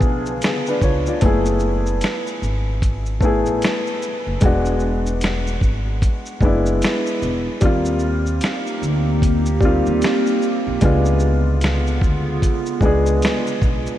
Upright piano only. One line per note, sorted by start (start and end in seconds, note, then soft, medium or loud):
0.00 0.41 B3 medium
0.00 0.42 D4 medium
0.00 0.43 F4 medium
0.00 0.42 G#4 loud
0.43 0.66 B3 medium
0.43 0.66 G#4 medium
0.68 0.82 D4 medium
0.68 0.82 B4 medium
0.83 1.06 F4 medium
0.83 1.06 C#5 medium
1.08 1.46 F4 medium
1.08 1.45 D5 medium
1.21 2.34 A3 medium
1.21 2.35 B3 medium
1.21 2.35 E4 medium
1.25 2.36 G#4 medium
3.20 4.04 A3 medium
3.20 4.05 B3 medium
3.20 4.06 E4 medium
3.25 4.06 G#4 medium
4.41 5.54 G#3 medium
4.41 5.55 B3 medium
4.41 5.55 D4 medium
4.45 5.56 F#4 medium
6.41 7.24 G#3 medium
6.41 7.25 B3 medium
6.41 7.26 D4 medium
6.45 7.27 E4 medium
7.61 8.74 G3 medium
7.61 8.74 A#3 medium
7.61 8.75 C4 medium
7.65 8.76 F4 medium
9.61 10.44 G3 medium
9.61 10.45 A#3 medium
9.61 10.46 C4 medium
9.65 10.46 F4 medium
10.81 11.94 G#3 medium
10.81 11.95 B3 medium
10.81 11.95 D4 medium
10.85 11.96 F4 medium
12.81 13.64 G#3 medium
12.81 13.65 B3 medium
12.81 13.66 D4 medium
12.85 13.67 G#4 medium